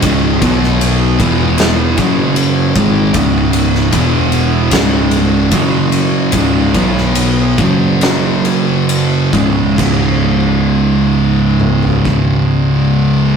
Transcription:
<<
  \new Staff \with { instrumentName = "Distorted electric guitar" } { \clef bass \time 4/4 \key cis \minor \tempo 4 = 73 <cis, gis, cis>8 <b, fis b>4 <e, b, e>4 <fis, cis fis>4 <gis, dis gis>8 | <cis, gis, cis>4 <e, b, e>4 <cis, gis, cis>4 <fis, cis fis>4 | <cis, gis, cis>8 <b, fis b>4 <fis, cis fis>2 <cis, gis, cis>8 | <cis, gis, cis>1 | }
  \new Staff \with { instrumentName = "Distorted electric guitar" } { \clef bass \time 4/4 \key cis \minor <cis, gis, cis>8 <b, fis b>4 <e, b, e>4 <fis, cis fis>4 <gis, dis gis>8 | <cis, gis, cis>4 <e, b, e>4 <cis, gis, cis>4 <fis, cis fis>4 | <cis, gis, cis>8 <b, fis b>4 <fis, cis fis>2 <cis, gis, cis>8 | <cis, gis, cis>1 | }
  \new Staff \with { instrumentName = "Picked electric bass" } { \clef bass \time 4/4 \key cis \minor cis,,8 b,,4 e,,4 fis,,4 gis,,8 | cis,,4 e,,4 cis,,4 fis,,4 | cis,,8 b,,4 fis,,2 cis,,8 | cis,,1 | }
  \new DrumStaff \with { instrumentName = "Drums" } \drummode { \time 4/4 <bd cymr>8 <bd cymr>16 sn16 cymr8 <bd cymr>8 <cymr sn>8 <bd cymr>8 cymr8 <bd cymr>8 | <bd cymr>8 cymr16 sn16 <bd cymr>8 cymr8 <bd cymr sn>8 cymr8 <bd cymr>8 cymr8 | <bd cymr>8 <bd cymr>16 sn16 cymr8 <bd cymr>8 <cymr sn>8 cymr8 cymr8 <bd cymr>8 | <cymc bd>4 r4 toml16 tomfh16 bd8 r4 | }
>>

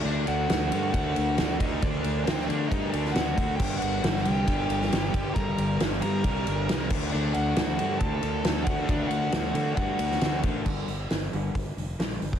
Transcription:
<<
  \new Staff \with { instrumentName = "Lead electric guitar" } { \time 4/4 \key d \phrygian \tempo 4 = 136 <d' d''>8 <fis' fis''>4. <fis' fis''>4. <ees' ees''>8 | <d' d''>4 <c' c''>8 <d' d''>8 <ees' ees''>8 <d' d''>8 <fis' fis''>4 | <g' g''>8 <fis' fis''>4 <g' g''>2~ <g' g''>8 | <bes' bes''>4 r8 <bes' bes''>2 r8 |
<d' d''>8 <fis' fis''>4. <a' a''>4. <fis' fis''>8 | <d' d''>8 <fis' fis''>4. <fis' fis''>4. r8 | \key g \minor r1 | }
  \new Staff \with { instrumentName = "Overdriven electric guitar" } { \clef bass \time 4/4 \key d \phrygian <d a d'>4 <d a d'>8 <d a d'>8 <d a d'>4 <d a d'>8 <d a d'>8 | <d a d'>4 <d a d'>8 <d a d'>8 <d a d'>4 <d a d'>8 <d a d'>8 | <g, d g>4 <g, d g>8 <g, d g>8 <g, d g>4 <g, d g>8 <g, d g>8 | <g, d g>4 <g, d g>8 <g, d g>8 <g, d g>4 <g, d g>8 <d a d'>8 |
<d a d'>4 <d a d'>8 <d a d'>8 <d a d'>4 <d a d'>8 <d a d'>8 | <d a d'>4 <d a d'>8 <d a d'>8 <d a d'>4 <d a d'>8 <d a d'>8 | \key g \minor r1 | }
  \new Staff \with { instrumentName = "Clean electric guitar" } { \clef bass \time 4/4 \key d \phrygian r1 | r1 | r1 | r1 |
r1 | r1 | \key g \minor <g, d g>8 <g, d>8 <g, d>8 <g, d g>8 <g, d>8 <g, d>8 <g, d g>8 <g, d>8 | }
  \new Staff \with { instrumentName = "Fingered electric bass" } { \clef bass \time 4/4 \key d \phrygian d,8 d,8 d,8 g,8 d,8 d,8 d,8 d,8 | d,8 d,8 d,8 d8 g,8 d,8 d,8 d,8 | g,,8 g,,8 g,,8 c,8 g,,8 g,,8 g,,8 g,,8 | g,,8 g,,8 g,,8 g,8 c,8 g,,8 c,8 d,8 |
d,8 d,8 d,8 g,8 d,8 d,8 d,8 d,8 | d,8 d,8 d,8 d8 g,8 d,8 d,8 a,,8 | \key g \minor g,,8 g,,8 g,,8 g,,8 g,,8 f,,8 bes,,8 g,,8 | }
  \new DrumStaff \with { instrumentName = "Drums" } \drummode { \time 4/4 r8 cymr8 <cymr sn>8 cymr8 <bd cymr>8 cymr8 <cymr sn>8 <bd cymr>8 | <bd cymr>8 cymr8 <cymr sn>16 sn16 cymr8 <bd cymr>8 cymr16 sn16 <cymr sn>8 <bd cymr>8 | <cymc bd>8 cymr8 <cymr sn>16 sn16 cymr8 <bd cymr>8 cymr16 sn16 <cymr sn>8 <bd cymr>8 | <bd cymr>8 cymr8 <cymr sn>16 sn16 cymr8 <bd cymr>8 cymr8 <cymr sn>8 <cymc bd>8 |
r8 cymr8 <cymr sn>8 cymr8 <bd cymr>8 cymr8 <cymr sn>8 <bd cymr>8 | <bd cymr>8 cymr8 <cymr sn>8 cymr8 <bd cymr>8 cymr16 sn16 <cymr sn>8 <bd cymr>8 | <cymc bd>8 hho8 <hho sn>8 hho8 <hho bd>8 hho8 <hho sn>8 hho16 bd16 | }
>>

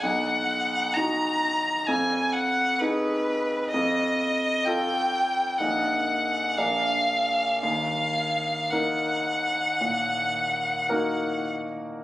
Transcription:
<<
  \new Staff \with { instrumentName = "Violin" } { \time 4/4 \key ees \minor \tempo 4 = 63 fis''4 bes''4 aes''8 ges''8 ces''4 | ees''4 g''4 ges''4 f''4 | f''4 ges''2~ ges''8 r8 | }
  \new Staff \with { instrumentName = "Grand piano" } { \time 4/4 \key ees \minor b,,4 <dis' fis'>4 f,4 <ees' aes'>4 | f,4 <f' a'>4 <bes,, bes ees' bes'>4 <bes,, bes d' bes'>4 | ees,4 <bes ees' bes'>4 bes,4 <bes ees' ges' bes'>4 | }
>>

